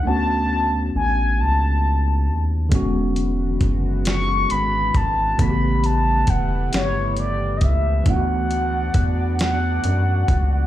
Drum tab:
HH |------|xxxxxx|xxxxxx|xxxxxx|
SD |------|---o--|---o--|---o--|
BD |------|o-o--o|o-o--o|o-o--o|